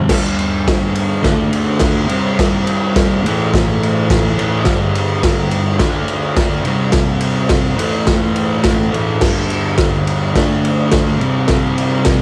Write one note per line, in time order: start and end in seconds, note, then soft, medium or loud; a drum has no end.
0.09 1.22 G2 loud
0.09 1.21 D3 medium
0.09 1.23 G3 loud
0.09 kick loud
0.09 snare loud
0.09 crash loud
0.39 ride medium
0.68 kick loud
0.68 snare loud
0.68 ride loud
0.95 ride medium
1.22 2.07 D3 loud
1.22 2.08 A3 loud
1.22 2.09 D4 loud
1.22 kick loud
1.22 snare loud
1.22 ride medium
1.53 ride medium
1.79 kick loud
1.79 snare loud
1.79 ride loud
2.08 3.21 C3 medium
2.08 3.22 G3 medium
2.08 3.23 C4 loud
2.08 ride medium
2.39 kick loud
2.39 snare loud
2.39 ride loud
2.67 ride medium
2.96 kick loud
2.96 snare loud
2.96 ride loud
3.24 4.36 A2 medium
3.24 4.37 E3 loud
3.24 4.36 A3 loud
3.24 ride medium
3.54 kick loud
3.54 snare loud
3.54 ride loud
3.83 ride medium
4.10 kick loud
4.10 snare loud
4.10 ride loud
4.38 4.66 A2 medium
4.38 4.65 E3 medium
4.38 4.64 A3 medium
4.38 ride medium
4.65 5.78 G2 medium
4.65 5.77 D3 medium
4.65 5.80 G3 loud
4.65 kick loud
4.65 snare loud
4.65 ride loud
4.95 ride medium
5.23 kick loud
5.23 snare loud
5.23 ride loud
5.51 ride medium
5.79 6.63 D3 loud
5.79 6.64 A3 medium
5.79 kick loud
5.79 snare loud
5.79 ride loud
5.83 6.65 D4 loud
6.08 ride medium
6.37 kick loud
6.37 snare loud
6.37 ride loud
6.64 7.76 C3 medium
6.64 7.77 G3 loud
6.64 ride medium
6.68 7.79 C4 loud
6.92 kick loud
6.92 snare loud
6.92 ride loud
7.21 ride medium
7.49 kick loud
7.49 snare loud
7.49 ride loud
7.76 8.90 A2 loud
7.76 8.91 E3 loud
7.76 8.92 A3 loud
7.76 ride medium
8.07 kick loud
8.07 snare loud
8.07 ride medium
8.36 ride medium
8.64 kick loud
8.64 snare loud
8.64 ride loud
8.93 9.22 A2 medium
8.93 9.21 E3 medium
8.93 9.20 A3 medium
8.93 ride medium
9.21 10.34 G2 medium
9.21 10.33 D3 medium
9.21 10.35 G3 loud
9.21 kick loud
9.21 snare loud
9.21 crash loud
9.50 ride medium
9.78 kick loud
9.78 snare loud
9.78 ride loud
10.07 ride medium
10.34 11.18 D3 medium
10.34 11.19 A3 loud
10.34 11.20 D4 loud
10.34 kick loud
10.34 snare loud
10.34 ride loud
10.65 ride medium
10.92 kick loud
10.92 snare loud
10.92 ride loud
11.19 12.22 C3 medium
11.19 12.22 G3 medium
11.19 12.22 C4 medium
11.19 ride medium
11.48 kick loud
11.48 snare loud
11.48 ride loud
11.78 ride medium
12.05 kick loud
12.05 snare loud
12.05 ride loud